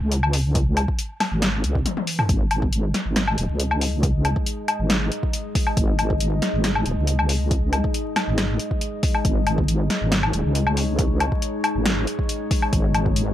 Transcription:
0.01 wobble bass C#2
0.12 closed hi-hat
0.23 low woodblock
0.33 open hi-hat
0.55 kick, closed hi-hat
0.77 closed hi-hat, low woodblock
0.88 kick
0.99 closed hi-hat
1.20 snare, open hi-hat, low woodblock
1.32 wobble bass G#1
1.42 snare, closed hi-hat
1.64 wobble bass C#2, closed hi-hat
1.75 kick
1.86 closed hi-hat, high tom
1.97 high tom
2.07 open hi-hat
2.19 mid tom, low woodblock
2.29 wobble bass G#1, ambient pad G#3 D#4 D#5, kick, closed hi-hat
2.51 closed hi-hat, low woodblock
2.62 kick
2.73 closed hi-hat
2.94 snare, closed hi-hat
3.06 wobble bass G#1
3.16 snare, closed hi-hat
3.28 low woodblock
3.38 wobble bass D#1, closed hi-hat
3.49 wobble bass C#2
3.60 closed hi-hat
3.71 low woodblock
3.81 open hi-hat
4.03 kick, closed hi-hat
4.25 closed hi-hat, low woodblock
4.36 kick
4.46 closed hi-hat
4.68 closed hi-hat, low woodblock
4.79 wobble bass G#1
4.90 snare, closed hi-hat
5.12 closed hi-hat
5.23 kick
5.33 closed hi-hat
5.55 kick, open hi-hat
5.67 low woodblock
5.77 wobble bass G#1, kick, closed hi-hat
5.99 closed hi-hat, low woodblock
6.10 kick
6.20 closed hi-hat
6.42 snare, closed hi-hat
6.54 wobble bass G#1
6.64 snare, closed hi-hat
6.75 low woodblock
6.86 wobble bass D#1, closed hi-hat
6.97 wobble bass C#2
7.07 closed hi-hat
7.19 low woodblock
7.29 open hi-hat
7.51 kick, closed hi-hat
7.73 closed hi-hat, low woodblock
7.84 kick
7.94 closed hi-hat
8.16 snare, closed hi-hat, low woodblock
8.28 wobble bass G#1
8.38 snare, closed hi-hat
8.60 closed hi-hat
8.71 kick
8.81 closed hi-hat
9.03 kick, open hi-hat
9.14 low woodblock
9.25 wobble bass G#1, ambient pad C#5, kick, closed hi-hat
9.47 closed hi-hat, low woodblock
9.58 kick
9.68 closed hi-hat
9.90 snare, closed hi-hat
10.01 wobble bass G#1
10.12 snare, closed hi-hat
10.23 low woodblock
10.33 wobble bass D#1, closed hi-hat
10.45 wobble bass C#2
10.55 closed hi-hat
10.67 low woodblock
10.77 open hi-hat
10.99 kick, closed hi-hat
11.20 closed hi-hat, low woodblock
11.32 kick
11.42 closed hi-hat
11.64 closed hi-hat, low woodblock
11.75 wobble bass G#1
11.86 snare, closed hi-hat
12.07 closed hi-hat
12.19 kick
12.29 closed hi-hat
12.51 kick, open hi-hat
12.62 low woodblock
12.73 wobble bass G#1, kick, closed hi-hat
12.94 closed hi-hat, low woodblock
13.06 kick
13.16 closed hi-hat

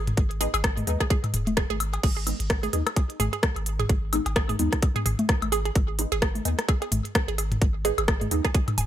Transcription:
Already playing: sub bass G#1
0.07 closed hi-hat, mid tom
0.17 sub bass G#1, kick, closed hi-hat
0.31 closed hi-hat
0.41 synth stab G#3 B3 D#4, synth arpeggio sound G#4, open hi-hat
0.54 sub bass G#1, synth arpeggio sound G#4, open hi-hat, high woodblock
0.64 kick, cross-stick, closed hi-hat, cowbell
0.77 mid tom, open hi-hat, high conga
0.87 sub bass D#2, synth stab G#3 B3 D#4, open hi-hat
1.00 synth arpeggio sound G#4, kick, cross-stick, closed hi-hat
1.10 synth arpeggio sound G#4, kick, closed hi-hat
1.24 closed hi-hat, mid tom, high woodblock
1.34 sub bass D#1, mid tom, open hi-hat
1.47 closed hi-hat, high conga
1.57 synth arpeggio sound G#4, kick, cross-stick, closed hi-hat
1.70 sub bass G#1, synth arpeggio sound G#4, closed hi-hat, high conga
1.80 open hi-hat, high woodblock
1.94 closed hi-hat, cowbell
2.03 sub bass G#1, synth arpeggio sound G#4, kick, closed hi-hat, crash
2.17 synth arpeggio sound G#4
2.27 synth stab G#3 B3 D#4, open hi-hat, high woodblock
2.40 sub bass G#1, closed hi-hat
2.50 kick, cross-stick, closed hi-hat
2.63 synth arpeggio sound G#4, open hi-hat, high conga
2.73 sub bass D#2, synth stab G#3 B3 D#4, synth arpeggio sound G#4, open hi-hat
2.87 cross-stick, closed hi-hat, high woodblock
2.96 kick, closed hi-hat, cowbell
3.10 closed hi-hat
3.20 sub bass G#1, synth arpeggio sound G#4, mid tom, open hi-hat, high conga
3.33 synth arpeggio sound G#4, closed hi-hat
3.43 kick, cross-stick, closed hi-hat
3.56 sub bass G#1, closed hi-hat, high woodblock
3.66 open hi-hat
3.79 synth arpeggio sound G#4, closed hi-hat, mid tom
3.89 sub bass G#1, synth arpeggio sound G#4, kick, closed hi-hat
4.13 synth stab G#3 B3 D#4, open hi-hat, high woodblock
4.26 sub bass G#1, closed hi-hat, cowbell
4.36 synth arpeggio sound G#4, kick, cross-stick, closed hi-hat
4.49 synth arpeggio sound G#4, mid tom, open hi-hat, high conga
4.59 sub bass D#2, synth stab G#3 B3 D#4, open hi-hat
4.73 kick, cross-stick, closed hi-hat
4.82 kick, closed hi-hat, high woodblock
4.96 synth arpeggio sound G#4, closed hi-hat, mid tom
5.06 sub bass G#1, synth arpeggio sound G#4, mid tom, open hi-hat
5.19 closed hi-hat, high conga
5.29 kick, cross-stick, closed hi-hat
5.42 sub bass G#1, closed hi-hat, high conga, high woodblock
5.52 synth arpeggio sound G#4, open hi-hat, cowbell
5.65 synth arpeggio sound G#4, closed hi-hat
5.75 sub bass G#1, kick, closed hi-hat
5.99 synth stab G#3 B3 D#4, open hi-hat
6.12 sub bass G#1, synth arpeggio sound G#4, closed hi-hat, high woodblock
6.22 synth arpeggio sound G#4, kick, cross-stick, closed hi-hat
6.35 open hi-hat, high conga
6.45 sub bass D#2, synth stab G#3 B3 D#4, open hi-hat
6.59 cross-stick, closed hi-hat
6.68 synth arpeggio sound G#4, kick, closed hi-hat, high woodblock
6.82 synth arpeggio sound G#4, closed hi-hat, cowbell
6.92 sub bass G#1, mid tom, open hi-hat, high conga
7.05 closed hi-hat
7.15 kick, cross-stick, closed hi-hat
7.28 sub bass G#1, synth arpeggio sound G#4, closed hi-hat
7.38 synth arpeggio sound G#4, open hi-hat, high woodblock
7.52 closed hi-hat, mid tom
7.62 sub bass G#1, kick, closed hi-hat
7.85 synth stab G#3 B3 D#4, synth arpeggio sound G#4, open hi-hat
7.98 sub bass G#1, synth arpeggio sound G#4, closed hi-hat, high woodblock
8.08 kick, cross-stick, closed hi-hat, cowbell
8.21 mid tom, open hi-hat, high conga
8.31 sub bass D#2, synth stab G#3 B3 D#4, open hi-hat
8.45 synth arpeggio sound G#4, kick, cross-stick, closed hi-hat
8.55 synth arpeggio sound G#4, kick, closed hi-hat
8.68 closed hi-hat, mid tom, high woodblock
8.78 sub bass D#1, synth arpeggio sound G#5, mid tom, open hi-hat

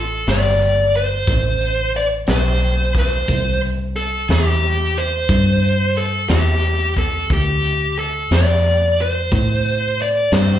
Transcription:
Already playing: fingered electric bass A1, lead electric guitar A4
0.27 fingered electric bass G1, lead electric guitar D5, snare, closed hi-hat
0.62 closed hi-hat
0.94 lead electric guitar C5, closed hi-hat
1.27 fingered electric bass A1, kick, closed hi-hat
1.61 closed hi-hat
1.95 lead electric guitar D5, closed hi-hat
2.27 fingered electric bass B1, lead electric guitar C5, snare, closed hi-hat
2.61 closed hi-hat
2.94 kick, snare, closed hi-hat
2.99 lead electric guitar C5
3.28 fingered electric bass C2, kick, closed hi-hat
3.62 closed hi-hat
3.96 lead electric guitar A4, closed hi-hat
4.29 fingered electric bass E2, lead electric guitar G4, snare, closed hi-hat
4.63 closed hi-hat
4.96 lead electric guitar C5, closed hi-hat
5.29 fingered electric bass G2, kick, closed hi-hat
5.63 closed hi-hat
5.95 lead electric guitar A4, closed hi-hat
6.29 fingered electric bass E2, lead electric guitar G4, snare, closed hi-hat
6.63 closed hi-hat
6.97 lead electric guitar A4, kick, closed hi-hat
7.30 fingered electric bass D2, lead electric guitar G4, kick, closed hi-hat
7.63 closed hi-hat
7.98 lead electric guitar A4, closed hi-hat
8.31 fingered electric bass F2, lead electric guitar D5, snare, closed hi-hat
8.65 closed hi-hat
8.98 lead electric guitar C5, closed hi-hat
9.32 fingered electric bass A2, kick, closed hi-hat
9.65 closed hi-hat
9.99 lead electric guitar D5, closed hi-hat
10.32 fingered electric bass G2, lead electric guitar C5, snare, closed hi-hat

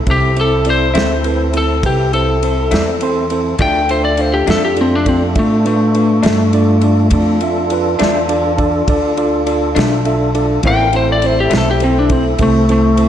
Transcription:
0.07 upright bass C2, tonewheel organ C4 E4 A4, tine electric piano C4 E4 A4 C5, kick, ride
0.11 lead electric guitar G4
0.36 tine electric piano C4 E4 A4 C5, ride
0.41 lead electric guitar A4
0.65 tine electric piano C4 E4 A4 D5, ride
0.70 lead electric guitar C5
0.94 upright bass D2, clean electric guitar A2 E3 C4 E4, tine electric piano C4 E4 A4 C5, snare, ride
1.24 tine electric piano C4 E4 A4 B4, ride
1.53 tine electric piano C4 E4 A4 C5, ride
1.57 lead electric guitar A4
1.83 upright bass C2, tine electric piano C4 E4 A4 B4, lead electric guitar G4, kick, ride
2.13 tine electric piano C4 E4 A4 C5, lead electric guitar A4, ride
2.43 tine electric piano C4 E4 A4 C5, ride
2.71 upright bass E2, clean electric guitar A2 E3 C4 E4, tine electric piano C4 E4 A4 D5, snare, ride
3.01 tine electric piano C4 E4 A4 C5 C6, ride
3.30 tine electric piano C4 E4 A4 C5, ride
3.59 upright bass D2, clean electric guitar D3 F3 A3 D4, tonewheel organ A3 D4 F4 A4, tine electric piano D4 F4 A4 D5, lead electric guitar G5, kick, ride
3.89 tine electric piano D4 F4 A4 E5, lead electric guitar C5, ride
4.05 lead electric guitar D5
4.17 tine electric piano D4 F4 A4 F5, lead electric guitar C5, ride
4.34 lead electric guitar G4
4.46 upright bass F2, clean electric guitar D3 F3 A3 D4, tine electric piano D4 F4 A4 D5, snare, ride
4.51 lead electric guitar A4
4.65 lead electric guitar G4
4.76 tine electric piano D4 F4 A4 D5, ride
4.81 lead electric guitar C4
4.95 lead electric guitar D4
5.06 lead electric guitar C4, tine electric piano D4 F4 A4 D5, kick, ride
5.36 upright bass A2, lead electric guitar A3, tine electric piano D4 F4 A4 E5, kick, ride
5.65 lead electric guitar A3, tine electric piano D4 F4 A4 B4, ride
5.94 tine electric piano D4 F4 A4 B4, ride
6.23 upright bass G2, clean electric guitar D3 F3 A3 D4, tine electric piano D4 F4 A4 D5, snare, ride
6.53 tine electric piano D4 F4 A4 D5, ride
6.81 tine electric piano D4 F4 A4 D5, ride
7.10 upright bass F2, tine electric piano D4 F4 A4 D5, tonewheel organ D4 F4 A4, kick, ride
7.41 tine electric piano D4 F4 A4 E5, ride
7.70 tine electric piano D4 F4 A4 B4, ride
7.99 upright bass E2, clean electric guitar D3 F3 A3 D4, tine electric piano D4 F4 A4 D5, snare, ride
8.28 tine electric piano D4 F4 A4 D5, ride
8.57 tine electric piano D4 F4 A4 D5, kick, ride
8.88 upright bass D2, tine electric piano D4 F4 A4 D5, kick, ride
9.17 tine electric piano D4 F4 A4 D5, ride
9.46 tine electric piano D4 F4 A4 D5, ride
9.75 upright bass B1, clean electric guitar D3 F3 A3 D4, tine electric piano D4 F4 A4 D5, ride
9.79 snare
10.05 tine electric piano D4 F4 A4 E5, ride
10.35 tine electric piano D4 F4 A4 D5, ride
10.63 upright bass A1, clean electric guitar A2 E3 C4 E4, tonewheel organ A#3 C#4 F4 A#4, tine electric piano C4 E4 A4 C5, kick, ride
10.67 lead electric guitar G5
10.93 tonewheel organ A3 C4 E4 A4, tine electric piano C4 E4 A4 C5, lead electric guitar C5, ride
11.12 lead electric guitar D5
11.22 tine electric piano C4 E4 A4 C5, ride
11.26 lead electric guitar C5
11.40 lead electric guitar G4
11.50 upright bass B1, clean electric guitar A2 E3 C4 E4, tine electric piano C4 E4 A4 C5, snare, ride
11.57 lead electric guitar A4
11.71 lead electric guitar G4
11.80 tine electric piano C4 E4 A4 C5, lead electric guitar C4, ride
11.99 lead electric guitar D4
12.10 tine electric piano C4 E4 A4 C5, lead electric guitar C4, kick, ride
12.39 upright bass C2, lead electric guitar A3, tine electric piano C4 E4 A4 C5, kick, ride
12.69 lead electric guitar A3, tine electric piano C4 E4 A4 C5, ride
12.97 tine electric piano C4 E4 A4 C5, ride

